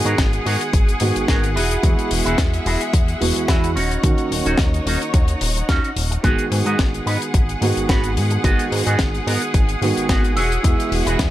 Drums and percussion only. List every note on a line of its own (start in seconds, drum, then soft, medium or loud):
0.06 closed hi-hat medium
0.18 kick loud
0.18 snare loud
0.18 closed hi-hat medium
0.33 closed hi-hat medium
0.46 open hi-hat loud
0.61 closed hi-hat medium
0.73 kick loud
0.73 closed hi-hat medium
0.89 closed hi-hat medium
1.00 open hi-hat loud
1.16 closed hi-hat medium
1.28 kick loud
1.28 snare loud
1.28 closed hi-hat medium
1.44 closed hi-hat medium
1.57 open hi-hat loud
1.71 closed hi-hat medium
1.83 kick loud
1.83 closed hi-hat loud
1.99 closed hi-hat soft
2.11 open hi-hat loud
2.26 closed hi-hat medium
2.38 kick loud
2.38 snare loud
2.38 closed hi-hat loud
2.54 closed hi-hat medium
2.66 open hi-hat loud
2.81 closed hi-hat medium
2.93 kick loud
2.93 closed hi-hat medium
3.08 closed hi-hat soft
3.22 open hi-hat loud
3.36 closed hi-hat medium
3.48 kick loud
3.48 snare loud
3.48 closed hi-hat loud
3.64 closed hi-hat medium
3.77 open hi-hat loud
3.91 closed hi-hat soft
4.04 kick loud
4.04 closed hi-hat loud
4.18 closed hi-hat medium
4.32 open hi-hat loud
4.46 closed hi-hat medium
4.58 kick loud
4.58 snare loud
4.58 closed hi-hat medium
4.74 closed hi-hat soft
4.87 open hi-hat loud
5.02 closed hi-hat medium
5.14 kick loud
5.14 closed hi-hat medium
5.28 closed hi-hat medium
5.41 open hi-hat loud
5.57 closed hi-hat soft
5.69 kick loud
5.69 snare loud
5.69 closed hi-hat medium
5.84 closed hi-hat medium
5.97 open hi-hat loud
6.12 closed hi-hat medium
6.24 kick loud
6.24 closed hi-hat medium
6.39 closed hi-hat medium
6.52 open hi-hat loud
6.66 closed hi-hat medium
6.79 kick loud
6.79 snare loud
6.79 closed hi-hat medium
6.94 closed hi-hat soft
7.07 open hi-hat loud
7.22 closed hi-hat medium
7.34 kick loud
7.34 closed hi-hat medium
7.49 closed hi-hat soft
7.62 open hi-hat loud
7.77 closed hi-hat medium
7.89 kick loud
7.89 snare loud
7.89 closed hi-hat medium
8.04 closed hi-hat medium
8.17 open hi-hat medium
8.30 closed hi-hat medium
8.44 kick loud
8.44 closed hi-hat medium
8.59 closed hi-hat medium
8.72 open hi-hat loud
8.86 closed hi-hat medium
8.99 kick loud
8.99 snare loud
8.99 closed hi-hat medium
9.14 closed hi-hat soft
9.28 open hi-hat loud
9.42 closed hi-hat medium
9.54 kick loud
9.54 closed hi-hat medium
9.69 closed hi-hat medium
9.82 open hi-hat medium
9.97 closed hi-hat medium
10.09 kick loud
10.09 snare loud
10.09 closed hi-hat loud
10.24 closed hi-hat soft
10.37 open hi-hat loud
10.52 closed hi-hat medium
10.64 kick loud
10.64 closed hi-hat loud
10.80 closed hi-hat medium
10.92 open hi-hat medium
11.07 closed hi-hat medium
11.19 kick loud
11.19 snare loud
11.19 closed hi-hat loud